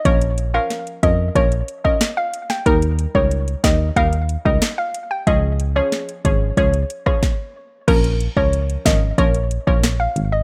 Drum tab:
CC |----------------|----------------|----------------|x---------------|
HH |xxx-xxx-xxx-x-x-|xxx-xxx-xxx-x-x-|x-x-xxx-xxx-----|xxx-xxx-xxx-x-x-|
SD |----o-------o--o|------o-----o---|----o------ro---|------o-----o---|
BD |o-----o-o--o----|o--o--o-o--o----|o-----o-o--oo---|o--o--o-o--o----|